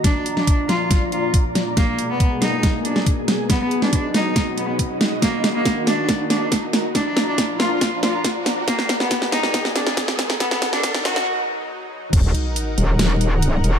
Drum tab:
CC |----------------|----------------|----------------|----------------|
HH |x-x-x-x-x-x-x-x-|x-x-x-x-x-x-x-x-|x-x-x-x-x-x-x-x-|x-x-x-x-x-x-x-x-|
SD |o--o--o-o-----o-|o-----o-o--o--o-|o--o--o-o-----o-|o-o-o-o-o-o-o-o-|
BD |o---o---o---o---|o---o---o---o---|o---o---o---o---|o---o---o---o---|

CC |----------------|----------------|----------------|x---------------|
HH |x-x-x-x-x-x-x-x-|x-x-x-x-x-x-x-x-|x-x-x-x---------|x-x-x-x-x-x-x-x-|
SD |o-o-o-o-o-o-o-o-|oooooooooooooooo|oooooooo--------|--------o-------|
BD |o---o---o---o---|o---o---o---o---|o---o-----------|o---------------|